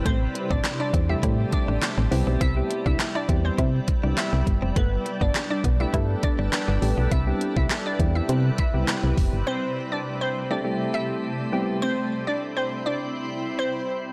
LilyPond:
<<
  \new Staff \with { instrumentName = "Synth pluck" } { \time 4/4 \key c \major \tempo 4 = 102 <c' c''>8 r16 <d' d''>16 r16 <d' d''>16 r16 <e' e''>16 r8 <d' d''>8. r8. | <e' e''>8 r16 <e' e''>16 r16 <d' d''>16 r16 <c' c''>8. r8 <e' e''>8. r16 | <b b'>8 r16 <d' d''>16 r16 <d' d''>16 r16 <e' e''>16 r8 <d' d''>8. r8. | <e' e''>8 r16 <e' e''>16 r16 <d' d''>16 r16 <e' e''>16 r8 <e' e''>8. r8. |
<c' c''>8 r16 <d' d''>16 r16 <c' c''>16 r16 <d' d''>16 r8 <e' e''>8. r8. | <c' c''>8 r16 <d' d''>16 r16 <c' c''>16 r16 <d' d''>8. r8 <c' c''>8. r16 | }
  \new Staff \with { instrumentName = "Ambient pad" } { \time 4/4 \key c \major << { a2.~ a8 e'8~ | e'1 | <a' b'>1 | <e' b'>1 |
a2.~ a8 <c' e'>8~ | <c' e'>1 | } \\ { <c g>1~ | <c g>1 | d'1 | c1 |
c1~ | c1 | } >> }
  \new Staff \with { instrumentName = "Clean electric guitar" } { \time 4/4 \key c \major a16 r8 c'16 r16 d'16 c'16 r16 e'16 r8 d'16 r16 c'16 r16 c'16 | c'16 r8 d'16 r16 e'16 c'16 r16 e'16 r8 d'16 r16 c'16 r16 c'16 | a16 r8 b16 r16 d'16 b16 r16 e'16 r8 d'16 r16 b16 r16 b16 | r1 |
r1 | r1 | }
  \new Staff \with { instrumentName = "Synth keys" } { \time 4/4 \key c \major r4. r16 <g a c' e' g'>16 <g a c' e' g'>8. r8. <g b c' e' g'>8 | r16 <g b c' e' g'>8. r8 <g b c' e' g'>8. r8 <g b c' e' g'>4 r16 | r4. r16 <g a b d' g'>16 <g a b d' a'>8. r8. <g a b d' g'>8 | r16 <g b c' e' g'>8. r8 <g b c' e' g'>8. r8 <g b c' e' g'>4 r16 |
r4. r16 <g a c' e' g'>16 <g a c' e' g'>8. r8. <g b c' e' g'>8 | r1 | }
  \new Staff \with { instrumentName = "FM bass" } { \clef bass \time 4/4 \key c \major a,,8 r16 a,,16 r8 e,8 a,8 r16 a,,16 r16 a,,16 c,16 b,,16 | c,8 r16 c,16 r8 e,8 c8 r16 c,16 r16 c,16 g,,16 f,,16 | g,,8 r16 g,,16 r8 b,,8 g,8 r16 g,,16 r16 g,,16 a,,16 b,,16 | c,8 r16 c,16 r8 e,8 c8 r16 c,16 r16 c,16 f,,16 g,,16 |
r1 | r1 | }
  \new DrumStaff \with { instrumentName = "Drums" } \drummode { \time 4/4 <hh bd>8 hh16 bd16 <hc hh sn>8 <hh bd>8 <hh bd>8 <hh bd>8 <hc hh sn>8 hho8 | <hh bd>8 hh16 bd16 <hc hh sn>8 <hh bd>8 <hh bd>8 <hh bd>8 <hc hh sn>8 <hh bd>8 | <hh bd>8 hh16 bd16 <hc hh sn>8 <hh bd>8 <hh bd>8 <hh bd>8 <hc hh sn>8 hho8 | <hh bd>8 hh16 bd16 <hc hh sn>8 <hh bd>8 hh8 <hh bd>8 <hc hh sn>8 <hho bd>8 |
r4 r4 r4 r4 | r4 r4 r4 r4 | }
>>